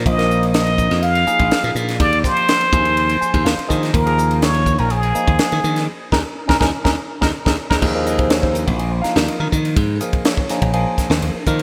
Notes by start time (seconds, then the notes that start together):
0.06 A#1 F3 A#3 D#4 F4 D#5, kick, ride
0.18 F3 A#3 D#4 A#4, snare, ride
0.30 hi-hat pedal
0.43 ride
0.54 D#5, snare, ride
0.67 ride
0.78 kick, hi-hat pedal
0.91 F2, snare, ride
1.03 F5, ride
1.15 ride
1.27 F3 A#3 D#4 G#4, muted slap bass stroke, hi-hat pedal
1.39 A#1, kick, ride
1.51 snare, ride
1.64 A#2, ride
1.75 A#2, hi-hat pedal
1.89 snare, ride
1.99 D#2 D5, kick, ride
2.13 ride
2.24 F3 A#3 D#4 G4 C5, kick, snare, hi-hat pedal
2.37 ride
2.48 snare, ride
2.61 ride
2.72 D#2 F3 A#3 D#4 G#4, kick, hi-hat pedal
2.85 ride
2.97 ride
3.09 ride
3.21 G#5, muted slap bass stroke, hi-hat pedal
3.34 D#2, kick, ride
3.45 D#2 F5, snare, ride
3.58 muted slap bass stroke, ride
3.68 D#3 F3 A#3 D#4 G#4 D#5, kick, hi-hat pedal
3.83 snare, ride
3.93 D#2 F3 A#3 D#4 A#4, kick, ride
4.06 F3 A#3 D#4 G#4, ride
4.18 hi-hat pedal
4.31 ride
4.42 C#5, snare, ride
4.54 ride
4.66 kick, hi-hat pedal
4.78 A#1 A#4, ride
4.90 G#4, ride
5.03 ride
5.14 F3 A#3 D#4 G#4, hi-hat pedal
5.27 D#2, kick, ride
5.39 snare, ride
5.52 D#3, ride
5.64 D#3, hi-hat pedal
5.76 snare, ride
6.12 D#2 C#4 D#4 G#4 A#4, kick, snare
6.48 D#2 C#4 D#4 G#4 A#4, kick, snare
6.60 D#2 C#4 D#4 G#4 A#4, kick, snare
6.84 D#2 C#4 D#4 G#4 A#4, kick, snare
7.21 D#2 C#4 D#4 G#4 A#4, kick, snare
7.45 D#2 C#4 D#4 G#4 A#4, kick, snare
7.70 D#2 C#4 D#4 G#4 A#4, kick, snare
7.81 D#2 F3 A#3 D#4 G#4, kick, crash
7.95 F3 A#3 D#4 G#4
8.06 D#5, hi-hat pedal, ride
8.18 C5, kick, ride
8.30 C#5, snare, ride
8.42 C5, kick
8.53 A#4, hi-hat pedal, ride
8.67 A#1 F#4, kick, ride
8.79 G#4, ride
8.90 C5
9.02 F3 A#3 D#4 A#4 F5, snare, hi-hat pedal, ride
9.16 D#2 D5, snare, ride
9.28 D#5, ride
9.40 D#3 A#4
9.52 D#3, kick, hi-hat pedal, ride
9.65 ride
9.76 G#2, kick, ride
9.97 A#3 A4, hi-hat pedal, ride
10.01 F3 D#4 G#4 A#4
10.13 kick, ride
10.25 C#5, snare, ride
10.37 kick
10.49 F3 A#3 D#4 G#4, snare, hi-hat pedal, ride
10.62 A#1, kick, ride
10.74 F3 A#3 D#4 G#4, ride
10.98 muted slap bass stroke, kick, snare, hi-hat pedal, ride
11.10 D#2, snare
11.22 D#2, ride
11.46 D#3 F3 A#3 D#4 A#4, kick, hi-hat pedal, ride
11.59 ride